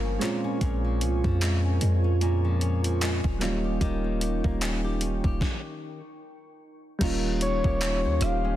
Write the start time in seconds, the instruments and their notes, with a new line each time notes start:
Already playing: 808-style bass G1, nylon-string guitar G2 F3 A#3, synth keys G3 A#3 C#4 F4, ambient pad F4 A#4 F5 C#6
0.04 nylon-string guitar C#4
0.19 nylon-string guitar A#2, synth keys G#3 C4 C#4, ambient pad G#5, clap, closed hi-hat
0.24 synth keys F4
0.44 nylon-string guitar C#4
0.61 808-style bass A#1, nylon-string guitar A#2 C#4, kick, closed hi-hat
0.84 nylon-string guitar F3
1.01 808-style bass C2, nylon-string guitar C#4, closed hi-hat
1.24 808-style bass F2, nylon-string guitar F3, kick
1.41 nylon-string guitar G#3, clap, closed hi-hat
1.64 nylon-string guitar C#4
1.81 808-style bass F2, nylon-string guitar G#3, closed hi-hat
2.04 nylon-string guitar C#4
2.21 nylon-string guitar A#2 C#4, closed hi-hat
2.45 nylon-string guitar F3
2.61 nylon-string guitar C#4, closed hi-hat
2.84 nylon-string guitar F3, closed hi-hat
3.01 nylon-string guitar G#3, clap, closed hi-hat
3.24 808-style bass D#1, nylon-string guitar C#4, kick
3.39 nylon-string guitar D#3, synth keys F#3 A#3 C#4, ambient pad D#4 G5, clap, closed hi-hat
3.43 synth keys G3 F4
3.64 nylon-string guitar G4
3.81 808-style bass D#1, nylon-string guitar D#3 G4, kick, closed hi-hat
4.04 nylon-string guitar A#3
4.21 nylon-string guitar G4, closed hi-hat
4.44 808-style bass D#1, nylon-string guitar A#3, kick
4.61 nylon-string guitar C#4, clap, closed hi-hat
4.84 nylon-string guitar G4
5.01 nylon-string guitar C#4, closed hi-hat
5.24 808-style bass D#1, nylon-string guitar G4, kick
5.41 kick, snare
6.99 808-style bass D#1, nylon-string guitar D#3, synth keys G3 A#3 C#4, ambient pad F4 D#5 G5 C6, kick, closed hi-hat, crash
7.04 synth keys F4
7.24 nylon-string guitar C#4
7.41 soft synth lead C#5, closed hi-hat
7.64 808-style bass D#1, nylon-string guitar G4, kick
7.81 nylon-string guitar C#4, clap, closed hi-hat
8.04 808-style bass D#2, nylon-string guitar C5
8.21 808-style bass D#1, nylon-string guitar G4, soft synth lead F5, cross-stick, closed hi-hat
8.45 nylon-string guitar C#4